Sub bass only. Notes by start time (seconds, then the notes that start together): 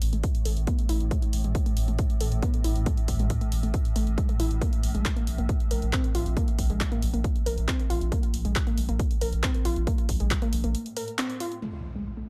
0.02 A1
0.13 A1
0.45 A1
0.57 A1
0.89 A1
1.00 A1
1.33 A1
1.44 A1
1.77 A1
1.88 A1
2.20 A1
2.32 A1
2.64 A1
2.76 A1
3.08 A1
3.19 A1
3.52 A1
3.63 A1
3.96 A1
4.07 A1
4.40 A1
4.51 A1
4.83 A#1
4.95 A#1
5.27 A#1
5.38 A#1
5.71 A#1
5.82 A#1
6.15 A#1
6.26 A#1
6.59 A#1
6.70 A#1
7.02 A#1
7.14 A#1
7.46 A#1
7.57 A#1
7.90 A#1
8.01 A#1
8.34 A#1
8.45 A#1
8.77 A#1
8.89 A#1
9.21 A#1
9.32 A#1
9.65 A#1
9.76 A#1
10.09 A#1
10.20 A#1
10.53 A#1
10.64 A#1